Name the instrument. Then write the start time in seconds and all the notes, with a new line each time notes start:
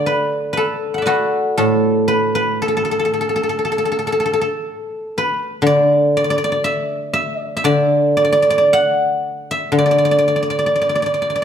guzheng
Already playing: D3 D5 E5
0.06 B4
0.53 B4
0.57 A4
0.94 E5 F#5
1.02 B4 D5
1.07 F#4 A4
1.58 A2 A4
2.08 B4
2.35 B4
2.62 A4
2.68 A4
2.77 A4
2.85 A4
2.91 A4
2.99 A4
3.05 A4
3.14 A4
3.21 A4
3.29 A4
3.36 A4
3.43 A4
3.49 A4
3.59 A4
3.65 A4
3.72 A4
3.78 A4
3.85 A4
3.92 A4
3.99 A4
4.07 A4
4.12 A4
4.20 A4
4.26 A4
4.33 A4
4.41 A4
5.18 B4
5.62 D3
5.67 D5
6.17 D5
6.24 D5
6.30 D5
6.38 D5
6.44 D5
6.52 D5
6.64 E5
7.13 E5
7.40 D5
7.57 E5
7.64 D3 D5
8.17 D5
8.25 D5
8.32 D5
8.42 D5
8.50 D5
8.58 D5
8.73 F#5
9.51 E5
9.72 D3
9.78 D5
9.86 D5
9.91 D5
9.98 D5
10.05 D5
10.11 D5
10.18 D5
10.28 D5
10.36 D5
10.43 D5
10.50 D5
10.59 D5
10.66 D5
10.76 D5
10.81 D5
10.89 D5
10.95 D5
11.02 D5
11.14 D5
11.22 D5
11.30 D5
11.36 D5